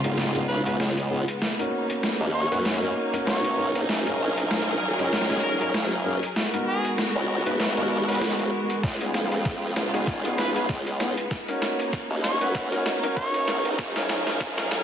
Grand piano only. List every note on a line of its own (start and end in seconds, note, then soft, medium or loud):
0.04 0.15 B3 medium
0.04 0.15 D#4 medium
0.04 0.15 F4 medium
0.04 0.15 G#4 medium
0.18 0.30 B3 medium
0.18 0.30 D#4 medium
0.18 0.30 F4 medium
0.18 0.30 G#4 medium
0.35 0.62 B3 medium
0.35 0.62 D#4 medium
0.35 0.62 F4 medium
0.35 0.62 G#4 loud
0.66 0.76 B3 medium
0.66 0.76 D#4 medium
0.66 0.76 F4 medium
0.66 0.76 G#4 loud
1.11 1.23 B3 medium
1.11 1.23 D#4 medium
1.11 1.23 F4 medium
1.11 1.23 G#4 medium
1.59 2.48 C#4 medium
1.59 2.48 D#4 medium
1.59 2.48 F#4 medium
1.59 2.48 A#4 medium
2.52 2.78 C#4 medium
2.52 2.78 D#4 medium
2.52 2.78 F#4 medium
2.52 2.78 B4 medium
2.83 3.09 C#4 medium
2.83 3.09 D#4 medium
2.83 3.09 F#4 medium
2.83 3.09 A#4 medium
3.13 3.55 C#4 medium
3.13 3.55 D#4 medium
3.13 3.55 F#4 medium
3.13 3.55 A#4 loud
3.58 4.02 C#4 medium
3.58 4.02 D#4 medium
3.58 4.02 G#4 medium
3.58 4.02 A#4 medium
4.06 4.95 C#4 medium
4.06 4.95 D#4 medium
4.06 4.95 G#4 medium
4.06 4.95 A#4 medium
4.99 5.09 C#4 medium
4.99 5.09 D#4 medium
4.99 5.09 G#4 medium
4.99 5.09 A#4 loud
5.12 5.25 C#4 medium
5.12 5.25 D#4 medium
5.12 5.25 G#4 medium
5.12 5.25 A#4 medium
5.30 5.57 C#4 medium
5.30 5.57 D#4 medium
5.30 5.57 G#4 medium
5.30 5.57 A#4 loud
5.61 5.70 C#4 medium
5.61 5.70 D#4 medium
5.61 5.70 G#4 medium
5.61 5.70 A#4 loud
6.05 6.18 C#4 medium
6.05 6.18 D#4 medium
6.05 6.18 G#4 medium
6.05 6.18 A#4 medium
6.54 7.42 B3 medium
6.54 7.42 D#4 medium
6.54 7.42 F#4 medium
6.54 7.42 A#4 medium
7.46 7.73 B3 medium
7.46 7.73 D#4 medium
7.46 7.73 F#4 medium
7.46 7.73 B4 medium
7.77 8.04 B3 medium
7.77 8.04 D#4 medium
7.77 8.04 F#4 medium
7.77 8.04 A#4 medium
8.08 8.82 B3 medium
8.08 8.82 D#4 medium
8.08 8.82 F#4 medium
8.08 8.82 A#4 loud
9.01 9.90 B3 medium
9.01 9.90 D#4 medium
9.01 9.90 F4 medium
9.01 9.90 G#4 medium
9.94 10.04 B3 medium
9.94 10.04 D#4 medium
9.94 10.04 F4 medium
9.94 10.04 G#4 loud
10.07 10.20 B3 medium
10.07 10.20 D#4 medium
10.07 10.20 F4 medium
10.07 10.20 G#4 medium
10.25 10.52 B3 medium
10.25 10.52 D#4 medium
10.25 10.52 F4 medium
10.25 10.52 G#4 loud
10.56 10.65 B3 medium
10.56 10.65 D#4 medium
10.56 10.65 F4 medium
10.56 10.65 G#4 loud
11.00 11.12 B3 medium
11.00 11.13 D#4 medium
11.00 11.13 F4 medium
11.00 11.13 G#4 medium
11.48 12.37 C#4 medium
11.48 12.37 D#4 medium
11.48 12.37 F#4 medium
11.48 12.37 A#4 medium
12.41 12.68 C#4 medium
12.41 12.68 D#4 medium
12.41 12.68 F#4 medium
12.41 12.68 B4 loud
12.72 12.99 C#4 medium
12.72 12.99 D#4 medium
12.72 12.99 F#4 medium
12.72 12.99 A#4 loud
13.03 13.44 C#4 loud
13.03 13.44 D#4 medium
13.03 13.44 F#4 medium
13.03 13.44 A#4 loud
13.48 13.92 C#4 medium
13.48 13.92 D#4 medium
13.48 13.92 G#4 medium
13.48 13.92 A#4 medium
13.96 14.83 C#4 medium
13.96 14.83 D#4 medium
13.96 14.83 G#4 medium
13.96 14.83 A#4 medium